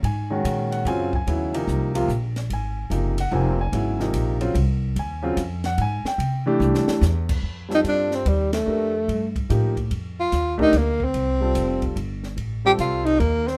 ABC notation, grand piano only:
X:1
M:3/4
L:1/8
Q:"Swing" 1/4=146
K:Abmix
V:1 name="Grand piano"
a3 g a a- | a2 z4 | a3 g a a- | a2 z4 |
a3 g a =g- | =g2 z4 | [K:Fmix] z6 | z6 |
z6 | z6 | z6 |]
V:2 name="Grand piano"
z [E,A,DG]3 [D,G,CF] z | [D,G,_C_F] [=C,=F,B,E]2 [C,F,B,=F] z2 | z2 [C,F,B,E] z [C,F,B,C] z | [D,G,_C_F] [=C,=F,B,E]2 [D,G,=C=F] z2 |
z [D,G,CF] z4 | z [=E,=A,=D=G]3 z2 | [K:Fmix] z [G,CFA]3 z2 | [A,DGB] z3 [F,B,EG] z |
z3 [A,DGB] z2 | z [G,CFA]3 z2 | z [G,CFA]3 z2 |]